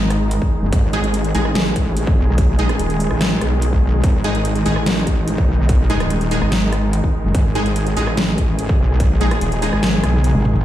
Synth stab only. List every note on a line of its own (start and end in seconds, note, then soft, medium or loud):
0.93 0.99 G#3 loud
0.93 0.99 D#4 medium
0.93 0.99 G#4 loud
1.35 1.44 G#3 medium
1.35 1.44 D#4 medium
1.35 1.44 G#4 loud
2.59 2.65 G#3 loud
2.59 2.65 D#4 medium
2.59 2.65 G#4 loud
4.24 4.30 G#3 loud
4.24 4.30 D#4 medium
4.24 4.30 G#4 loud
4.66 4.75 G#3 medium
4.66 4.75 D#4 medium
4.66 4.75 G#4 loud
5.90 5.96 G#3 loud
5.90 5.96 D#4 medium
5.90 5.96 G#4 loud
6.31 6.41 G#3 medium
6.31 6.41 D#4 medium
6.31 6.41 G#4 loud
7.55 7.61 G#3 loud
7.55 7.61 D#4 medium
7.55 7.61 G#4 loud
7.97 8.06 G#3 medium
7.97 8.06 D#4 medium
7.97 8.06 G#4 loud
9.21 9.27 G#3 loud
9.21 9.27 D#4 medium
9.21 9.27 G#4 loud
9.62 9.72 G#3 medium
9.62 9.72 D#4 medium
9.62 9.72 G#4 loud